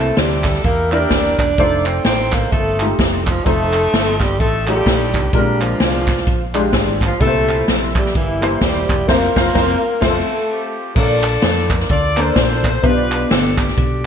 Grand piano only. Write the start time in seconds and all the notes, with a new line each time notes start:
Already playing: C3 A#3 E4 G4 C5
0.92 A#3 E4 G4 A#4
1.58 A3 D#4 F4 C5
2.80 G#3 D#4 F4 G4
2.85 A3
3.45 A3 D#4 F4 C5
4.68 A3 D#4 F4 G#4
4.75 A4
5.33 A#2 G#3 C4 F4 A#4
5.39 D4
6.54 G#3 D4 F4 G4
7.20 A#2 C3 E4 G4 B4
7.27 C5
8.41 A#3 E4 G4 C5
9.08 A#3 C4 F4 C5
9.35 A#3 C4 F4 C5
9.54 A#3 C4 F4 C5
10.00 A3 C4 F4 C5
10.95 A#2 A#3 D4 F4 A4 C#5
11.02 D5
12.17 A#3 D4 F4 A4 D5
12.82 B2 B3 D4 F4 G4 C5
12.90 D5